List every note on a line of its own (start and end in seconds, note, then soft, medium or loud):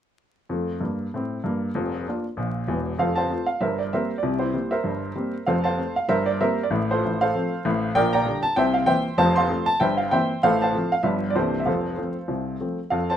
0.49 0.74 F2 medium
0.49 0.75 A3 medium
0.81 1.05 G2 soft
0.81 1.06 A#3 soft
1.14 1.38 A2 medium
1.14 1.39 C4 medium
1.44 1.68 G2 medium
1.44 1.69 A#3 medium
1.75 2.01 F1 medium
1.75 2.01 F2 medium
2.07 2.24 A#3 soft
2.07 2.25 D4 soft
2.07 2.25 F4 soft
2.37 2.63 A#1 medium
2.37 2.63 A#2 medium
2.67 2.92 E1 medium
2.67 2.92 E2 medium
2.98 3.25 F1 medium
2.98 3.25 F2 medium
2.98 3.16 A4 medium
2.98 3.16 C5 medium
2.98 3.16 F5 medium
3.15 3.46 C5 medium
3.15 3.45 F5 medium
3.15 3.47 A5 medium
3.29 3.46 A3 soft
3.29 3.47 C4 soft
3.29 3.47 F4 soft
3.46 3.60 F5 medium
3.60 3.87 G1 medium
3.60 3.87 G2 medium
3.60 3.78 A#4 medium
3.60 3.78 C5 soft
3.60 3.79 E5 medium
3.79 3.91 D5 medium
3.93 4.10 G3 soft
3.93 4.11 A#3 soft
3.93 4.11 C4 soft
3.93 4.16 A#4 medium
3.93 4.16 C5 medium
3.93 4.17 E5 medium
4.18 4.42 D5 medium
4.23 4.49 C2 medium
4.23 4.49 C3 medium
4.39 4.69 E4 soft
4.39 4.69 G4 medium
4.39 4.71 C5 medium
4.54 4.71 G3 soft
4.54 4.71 A#3 soft
4.54 4.71 C4 soft
4.71 5.42 A#4 medium
4.71 5.43 C5 medium
4.71 5.46 E5 medium
4.84 5.11 G1 medium
4.84 5.10 G2 medium
5.15 5.32 G3 soft
5.15 5.33 A#3 soft
5.15 5.34 C4 soft
5.46 5.73 F1 medium
5.46 5.73 F2 medium
5.46 5.64 A4 medium
5.46 5.63 C5 medium
5.46 5.64 F5 medium
5.64 5.94 C5 medium
5.64 5.94 F5 medium
5.64 5.95 A5 medium
5.78 5.95 A3 soft
5.78 5.95 C4 soft
5.96 6.09 F5 medium
6.08 6.35 G1 medium
6.08 6.35 G2 medium
6.08 6.26 A#4 medium
6.08 6.26 C5 medium
6.08 6.27 E5 medium
6.26 6.39 D5 medium
6.41 6.57 G3 medium
6.41 6.58 A#3 soft
6.41 6.58 C4 soft
6.41 6.63 A#4 medium
6.41 6.63 C5 medium
6.41 6.65 E5 medium
6.63 6.88 D5 medium
6.70 6.95 A1 medium
6.70 6.95 A2 medium
6.91 7.19 F4 medium
6.91 7.19 A4 medium
6.91 7.21 C5 medium
7.05 7.28 A1 medium
7.05 7.29 A2 medium
7.21 7.92 A4 medium
7.21 7.92 C5 medium
7.21 7.95 F5 medium
7.35 7.51 F3 soft
7.35 7.51 A3 soft
7.35 7.52 C4 soft
7.65 7.89 A1 medium
7.65 7.89 A2 medium
7.95 8.21 A#1 medium
7.95 8.22 A#2 medium
7.95 8.13 A#4 medium
7.95 8.12 D5 medium
7.95 8.13 G5 loud
8.13 8.42 D5 medium
8.13 8.42 G5 medium
8.13 8.44 A#5 medium
8.25 8.42 D3 soft
8.25 8.42 G3 soft
8.25 8.43 D4 soft
8.43 8.56 A5 loud
8.56 8.83 C2 medium
8.56 8.83 C3 medium
8.56 8.74 C5 medium
8.56 8.75 E5 medium
8.56 8.75 G5 loud
8.74 8.87 F5 medium
8.86 9.04 E3 medium
8.86 9.04 A#3 soft
8.86 9.05 C4 medium
8.86 9.16 C5 medium
8.86 9.16 E5 medium
8.86 9.18 G5 loud
9.18 9.44 F1 medium
9.18 9.45 F2 medium
9.18 9.35 C5 medium
9.18 9.35 F5 medium
9.18 9.36 A5 loud
9.36 9.66 F5 medium
9.36 9.65 A5 medium
9.36 9.67 C6 loud
9.50 9.67 F3 soft
9.50 9.67 A3 soft
9.50 9.67 C4 soft
9.66 9.80 A5 loud
9.80 10.07 G1 medium
9.80 10.07 G2 medium
9.80 9.98 C5 medium
9.80 9.98 E5 medium
9.80 9.98 G5 medium
9.97 10.11 F5 medium
10.11 10.29 E3 soft
10.11 10.29 A#3 soft
10.11 10.29 C4 medium
10.11 10.41 C5 medium
10.11 10.41 E5 medium
10.11 10.43 G5 medium
10.43 10.70 A1 medium
10.43 10.70 A2 medium
10.43 10.61 A4 medium
10.43 10.60 C5 medium
10.43 10.61 F5 loud
10.62 10.91 C5 medium
10.62 10.90 F5 medium
10.62 10.92 A5 medium
10.75 10.92 F3 soft
10.75 10.92 A3 soft
10.75 10.92 C4 soft
10.92 11.05 F5 medium
11.03 11.30 G1 medium
11.03 11.31 G2 medium
11.03 11.21 F3 soft
11.03 11.21 B3 soft
11.03 11.22 D4 soft
11.03 11.28 E5 medium
11.30 11.36 D5 medium
11.36 11.62 C2 medium
11.36 11.62 C3 medium
11.36 11.53 E3 soft
11.36 11.54 A#3 soft
11.36 11.54 D4 soft
11.36 11.59 G4 medium
11.36 11.59 A4 medium
11.36 11.60 C5 medium
11.60 11.67 E5 medium
11.65 11.93 F1 medium
11.65 11.93 F2 medium
11.65 12.56 A4 medium
11.65 12.56 C5 medium
11.65 12.59 F5 medium
11.97 12.15 F3 soft
11.97 12.14 A3 soft
11.97 12.15 C4 soft
12.28 12.55 C2 medium
12.28 12.56 C3 medium
12.61 12.78 F3 soft
12.61 12.78 A3 soft
12.61 12.78 C4 soft
12.90 13.17 F2 medium
12.90 13.08 A4 medium
12.90 13.09 F5 medium
13.10 13.17 C5 medium
13.10 13.17 A5 medium